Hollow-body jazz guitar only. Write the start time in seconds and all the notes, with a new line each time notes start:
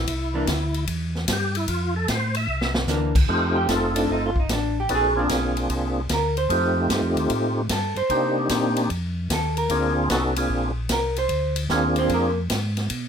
0.34 E3 A#3 D4
2.88 E3 A#3 D4
3.56 G4
3.72 F4
3.96 D4
4.12 D#4
4.26 F4
4.40 D#4
4.53 D4
4.80 G4
4.95 G#4
5.19 D4
6.13 A#4
6.38 C5
7.72 A4
7.97 C5
9.33 A4
9.58 A#4
10.92 A#4
11.19 C5
11.98 C4 C5
12.14 A#3 A#4